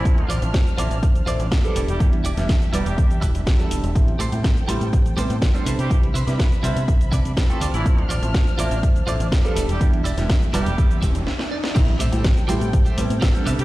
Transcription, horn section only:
X:1
M:4/4
L:1/16
Q:1/4=123
K:Am
V:1 name="Horn section"
[E,E]3 z12 [G,G]- | [G,G] z4 z [G,G]4 z6 | z12 z3 [G,G]- | [G,G] z12 [A,A] z [E,E]- |
[E,E]3 z12 [G,G]- | [G,G] z4 z [G,G]4 z6 | z12 z3 [G,G] |]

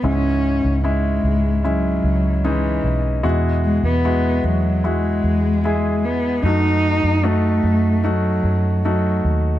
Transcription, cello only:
X:1
M:4/4
L:1/16
Q:1/4=75
K:C#m
V:1 name="Cello" clef=bass
C4 G,4 F,4 E,3 z | z2 G, B,3 F,2 G,6 B,2 | D4 A,4 F,4 F,3 z |]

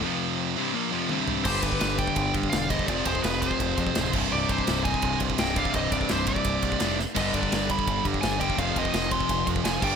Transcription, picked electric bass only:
X:1
M:4/4
L:1/8
Q:1/4=168
K:Gphr
V:1 name="Picked electric bass" clef=bass
z8 | G,,, G,,, G,,,2 G,,, G,, =E,,,2 | F,,, F,,, F,,,2 F,,, F,, D,,, C,,, | C,,, C,,, C,,,2 C,,, C,, C,,,2 |
C,,, C,,, C,,,2 C,,, C,, F,,,2 | G,,, G,,, G,,,2 G,,, G,, G,,,2 | F,,, F,,, F,,,2 F,,, F,, F,,, G,,, |]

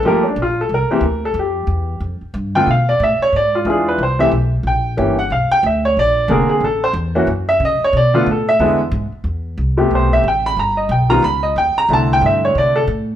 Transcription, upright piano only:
X:1
M:4/4
L:1/8
Q:"Swing" 1/4=182
K:Am
V:1 name="Upright piano"
_B [^CD] F A B3 A | G4 z3 g | f d e ^c d F ^G B | c e z2 g3 ^f |
f g e ^c d2 _B _A | A c z3 e ^d ^c | d z A e2 z3 | z4 c e g b |
_b ^d g b =b d g _b | a g e ^c d A z2 |]
V:2 name="Upright piano"
[F,A,_B,G] z4 [E,B,CG] z2 | z6 z [D,A,B,F] | z6 [E,^G,DF]2 | z [E,A,CG] z4 [E,^A,^CG] z |
z6 [D,_B,C_A]2 | z3 [E,_B,^C^F] z4 | z [D,A,B,F] z2 [D,^G,B,E] z3 | z3 [C,A,B,G]3 z2 |
z3 [^D,G,B,F] z4 | [D,A,CE]4- [D,A,CE] z3 |]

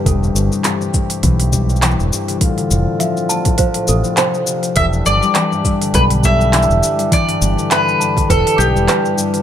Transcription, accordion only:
X:1
M:4/4
L:1/8
Q:"Swing 16ths" 1/4=102
K:Ephr
V:1 name="Accordion"
[A,CG]8 | [D,CF]8 | [E,DG]8- | [E,DG]8 |]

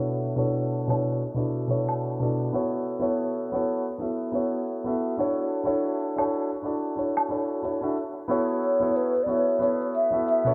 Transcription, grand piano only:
X:1
M:4/4
L:1/16
Q:"Swing 16ths" 1/4=91
K:Bdor
V:1 name="Grand piano"
[B,,DEFAc]2 [B,,DEFAc]3 [B,,DEFAc]2 z [B,,DEFAd]2 [B,,DEFAc]3 [B,,DEFAd]2 [B,EFAc]- | [B,EFAc]2 [B,EFAc]3 [B,EFAc]2 z [B,EFAe]2 [B,EFAc]3 [B,EFAe]2 [DEFAc]- | [DEFAc]2 [DEFAc]3 [DEFAc]2 z [DEFAd]2 [DEFAc]2 [DEFAc]2 [DEFAc] [DEFAe] | z2 [B,EFAc]3 [B,EFAc]2 z [B,EFAe]2 [B,EFAc]3 [B,EFAe]2 [B,,DEFAc] |]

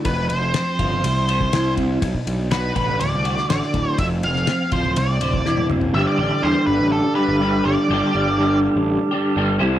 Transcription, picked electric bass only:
X:1
M:4/4
L:1/16
Q:1/4=122
K:G
V:1 name="Picked electric bass" clef=bass
=F,,,2 F,,,2 z2 G,,,2 C,,4 C,,4 | B,,, z B,,,4 A,,,2 D,,, C,,2 z A,,, z D,,, z | =F,,,2 F,,,2 z2 D,,,2 C,,2 D,,,2 E,,,2 ^F,,,2 | G,,, z A,,, z E,, z G,,, A,,,2 z2 G,,,3 G,,, z |
G,,, z G,,,4- G,,, A,,,2 z3 G,,,2 C,,2 |]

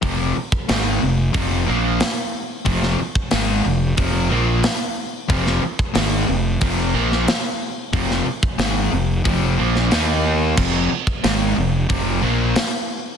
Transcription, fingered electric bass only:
X:1
M:4/4
L:1/8
Q:1/4=91
K:Eblyd
V:1 name="Fingered electric bass" clef=bass
F,,, z _A,,, F,,, z B,,, z2 | F,,, z _A,,, F,,, F,,, B,,, z2 | F,,, z _A,,, F,,, F,,, B,,, z2 | F,,, z _A,,, F,,, F,,, B,,, E,,2 |
F,,, z _A,,, F,,, F,,, B,,, z2 |]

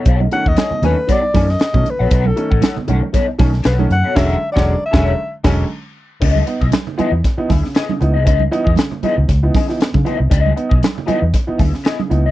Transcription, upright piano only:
X:1
M:4/4
L:1/16
Q:"Swing 16ths" 1/4=117
K:C#m
V:1 name="Upright piano"
B,, [A,C] [D,A,C] z [A,C] B,, [D,A,C] z B,, z [D,A,C] [A,C] z [D,A,C] z B,, | B,, [A,C] [D,A,C] z [A,C] B,, [D,A,C] z B,, z [D,A,C] [A,C] z [D,A,C] z B,, | [=D,F,G,C]2 z [D,F,G,C]2 z [D,F,G,C]2 z2 [D,F,G,C]2 z4 | C, z [B,D] z3 [E,B,D] z2 [E,B,D] z C, [B,D] C, [E,B,D] z |
C, z [E,B,D] [B,D] C, z [E,B,D] [B,D] z [E,B,D] C, [E,B,D] [B,D] C, [E,B,D] z | C, z [B,D] z3 [E,B,D] z2 [E,B,D] z C, [B,D] C, [E,B,D] z |]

